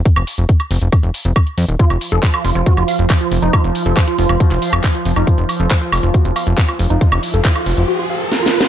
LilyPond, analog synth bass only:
\new Staff \with { instrumentName = "Analog synth bass" } { \clef bass \time 4/4 \tempo 4 = 138 r16 f,,16 r16 f,,16 r8 f,,16 f,,16 r16 f,,16 r16 f,,16 r8 f,16 ees,,16 | r16 f,,16 r16 f,,16 r8 f,,16 f,,16 r16 f,,16 r16 f,,16 r8 f,,16 f,,16 | r16 f,,16 r16 f,,16 r8 f,,16 f,,16 r16 f,,16 r16 f,,16 r8 f,,16 f,,16 | r16 f,,16 r16 f,,16 r8 f,,16 f,,16 r16 f,,16 r16 f,,16 r8 f,,16 f,,16 |
r16 f,,16 r16 f,,16 r8 f,,16 f,,16 r2 | }